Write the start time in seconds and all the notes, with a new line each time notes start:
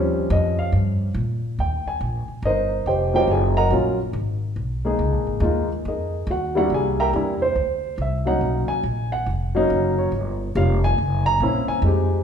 Already playing: D#2 F3 G3 C4 C#4
0.30 F2 D#5
0.59 F5
0.72 G2
1.14 A#2
1.59 D#2 G5
1.86 G#5, muted upright bass stroke
2.01 A#1
2.28 muted upright bass stroke
2.42 G1 D#4 A#4 D#5
2.46 C5
2.86 F1 G4 C5 D#5 G5
3.13 F#3 A#3 C#4 F4 G4 C5 D#5 G5
3.28 F#1 G#4 G#5
3.57 A#4 D#5 F#5 A#5
3.70 A#1 F#3 A#3 C#4 F4
4.13 G#1
4.56 B1
4.85 G#3 A#3 D#4 G#4
4.99 C#2
5.12 A#1
5.27 G#1
5.40 D#2 G#3 A#3 D#4 F4
5.85 F2 D#4 G#4 A#4 D#5
6.27 D#2 F#4
6.31 F#5
6.55 G3 A#3 D4 E4 F#4 F#5
6.70 C2
6.74 G#4 G#5
7.00 A#4 E5 G5 A#5
7.13 E2 G3 A#3 D4 E4
7.42 C5
7.56 D2
7.98 C2 E5
8.25 F#3 A#3 C#4 D#4 F#5
8.41 B1
8.68 G#5, muted upright bass stroke
8.83 A#1
9.12 F#5
9.26 F1
9.55 F#3 A#3 C#4 D#4
9.70 F#1
9.98 C#5
10.12 G1
10.55 F1 G3 A#3 C#4 F4 F5
10.84 G#5
10.98 F#1
11.26 A#5
11.40 A#1 A#3 C4 C#4 E4
11.68 G#5, muted upright bass stroke
11.82 F2 G#3 C4 D#4
11.86 G4